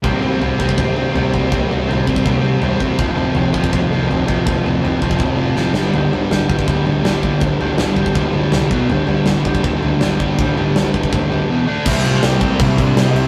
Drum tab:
CC |----------------|----------------|----------------|----------------|
SD |----------------|----------------|----------------|------------o-o-|
FT |o-o-o-o-o-o-o-o-|o-o-o-o-o-o-o-o-|o-o-o-o-o-o-o-o-|o-o-o-o-o-o-----|
BD |o-----ooo-----o-|o-----ooo-----o-|o-----ooo-----o-|o-----ooo-------|

CC |----------------|----------------|----------------|----------------|
SD |----o-------o---|----o-------o---|----o-------o---|----o-----------|
FT |o-o-o-o-o-o-o-o-|o-o-o-o-o-o-o-o-|o-o-o-o-o-o-o-o-|o-o-o-o-o-o-----|
BD |------ooo-----o-|o-----ooo-----o-|------ooo-----o-|o-----ooo-------|

CC |x-x-x-x-x-x-x-x-|
SD |----o-------o---|
FT |----------------|
BD |o-----o-o-o-----|